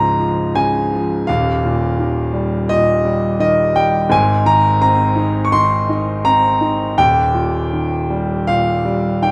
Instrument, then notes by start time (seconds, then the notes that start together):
grand piano
Already playing: C#2 G#2 C#3 F3 F5 G#5 A#5
0.19 F3
0.55 C#3 G#5
0.92 F3
1.27 D#1 D#2 F5
1.65 A#2
1.99 D#3
2.33 G3
2.69 A#2 D#5
3.05 G3
3.40 D#3 D#5
3.75 G3 G5
4.09 G#1 G#2 G#5
4.45 D#3 A#5
4.81 C4 A#5
5.16 D#4
5.45 C#6
5.52 D#3 C6
5.89 D#4
6.25 C4 A#5
6.61 D#4
6.97 D#1 D#2 G5
7.34 A#2
7.73 D#3
8.10 G3
8.47 A#2 F5
8.85 G3
9.22 D#3 G5